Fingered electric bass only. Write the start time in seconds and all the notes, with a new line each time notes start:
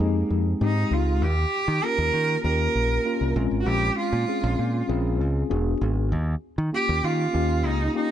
0.00 F2
0.30 F2
0.61 G#2
0.91 C#2
1.22 D#2
1.68 D#3
1.98 D#2
2.13 D#3
2.44 D#2
2.75 A#1
3.21 C2
3.36 A#1
3.51 G#1
3.66 A#1
4.13 A#2
4.44 A#1
4.59 A#2
4.89 A#1
5.20 C#2
5.51 E1
5.81 G#1
6.12 D#2
6.58 D#3
6.89 D#2
7.04 D#3
7.34 D#2
7.65 C#2